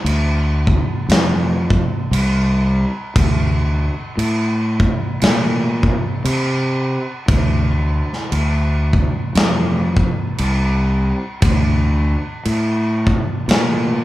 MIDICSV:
0, 0, Header, 1, 3, 480
1, 0, Start_track
1, 0, Key_signature, -1, "minor"
1, 0, Tempo, 1032702
1, 1467, Time_signature, 4, 2, 24, 8
1, 6527, End_track
2, 0, Start_track
2, 0, Title_t, "Fingered electric bass"
2, 0, Program_c, 0, 33
2, 20, Note_on_c, 0, 38, 104
2, 358, Note_off_c, 0, 38, 0
2, 504, Note_on_c, 0, 41, 103
2, 840, Note_off_c, 0, 41, 0
2, 981, Note_on_c, 0, 36, 104
2, 1318, Note_off_c, 0, 36, 0
2, 1468, Note_on_c, 0, 38, 96
2, 1803, Note_off_c, 0, 38, 0
2, 1940, Note_on_c, 0, 45, 106
2, 2277, Note_off_c, 0, 45, 0
2, 2427, Note_on_c, 0, 46, 111
2, 2762, Note_off_c, 0, 46, 0
2, 2903, Note_on_c, 0, 48, 115
2, 3239, Note_off_c, 0, 48, 0
2, 3383, Note_on_c, 0, 38, 100
2, 3720, Note_off_c, 0, 38, 0
2, 3866, Note_on_c, 0, 38, 95
2, 4201, Note_off_c, 0, 38, 0
2, 4347, Note_on_c, 0, 41, 105
2, 4682, Note_off_c, 0, 41, 0
2, 4830, Note_on_c, 0, 36, 102
2, 5164, Note_off_c, 0, 36, 0
2, 5309, Note_on_c, 0, 38, 95
2, 5644, Note_off_c, 0, 38, 0
2, 5789, Note_on_c, 0, 45, 104
2, 6124, Note_off_c, 0, 45, 0
2, 6265, Note_on_c, 0, 46, 105
2, 6527, Note_off_c, 0, 46, 0
2, 6527, End_track
3, 0, Start_track
3, 0, Title_t, "Drums"
3, 29, Note_on_c, 9, 49, 65
3, 75, Note_off_c, 9, 49, 0
3, 312, Note_on_c, 9, 36, 88
3, 359, Note_off_c, 9, 36, 0
3, 509, Note_on_c, 9, 49, 64
3, 519, Note_on_c, 9, 38, 110
3, 556, Note_off_c, 9, 49, 0
3, 566, Note_off_c, 9, 38, 0
3, 792, Note_on_c, 9, 36, 88
3, 839, Note_off_c, 9, 36, 0
3, 990, Note_on_c, 9, 49, 74
3, 1036, Note_off_c, 9, 49, 0
3, 1468, Note_on_c, 9, 36, 127
3, 1469, Note_on_c, 9, 49, 77
3, 1514, Note_off_c, 9, 36, 0
3, 1515, Note_off_c, 9, 49, 0
3, 1947, Note_on_c, 9, 49, 62
3, 1993, Note_off_c, 9, 49, 0
3, 2230, Note_on_c, 9, 36, 85
3, 2277, Note_off_c, 9, 36, 0
3, 2424, Note_on_c, 9, 49, 71
3, 2434, Note_on_c, 9, 38, 113
3, 2471, Note_off_c, 9, 49, 0
3, 2481, Note_off_c, 9, 38, 0
3, 2711, Note_on_c, 9, 36, 87
3, 2757, Note_off_c, 9, 36, 0
3, 2907, Note_on_c, 9, 49, 75
3, 2953, Note_off_c, 9, 49, 0
3, 3386, Note_on_c, 9, 36, 127
3, 3386, Note_on_c, 9, 49, 68
3, 3432, Note_off_c, 9, 36, 0
3, 3432, Note_off_c, 9, 49, 0
3, 3780, Note_on_c, 9, 38, 31
3, 3826, Note_off_c, 9, 38, 0
3, 3867, Note_on_c, 9, 49, 66
3, 3913, Note_off_c, 9, 49, 0
3, 4152, Note_on_c, 9, 36, 79
3, 4198, Note_off_c, 9, 36, 0
3, 4347, Note_on_c, 9, 49, 64
3, 4357, Note_on_c, 9, 38, 126
3, 4394, Note_off_c, 9, 49, 0
3, 4404, Note_off_c, 9, 38, 0
3, 4632, Note_on_c, 9, 36, 86
3, 4678, Note_off_c, 9, 36, 0
3, 4826, Note_on_c, 9, 49, 69
3, 4873, Note_off_c, 9, 49, 0
3, 5307, Note_on_c, 9, 49, 73
3, 5309, Note_on_c, 9, 36, 117
3, 5354, Note_off_c, 9, 49, 0
3, 5355, Note_off_c, 9, 36, 0
3, 5788, Note_on_c, 9, 49, 68
3, 5835, Note_off_c, 9, 49, 0
3, 6073, Note_on_c, 9, 36, 82
3, 6120, Note_off_c, 9, 36, 0
3, 6269, Note_on_c, 9, 49, 71
3, 6279, Note_on_c, 9, 38, 107
3, 6315, Note_off_c, 9, 49, 0
3, 6325, Note_off_c, 9, 38, 0
3, 6527, End_track
0, 0, End_of_file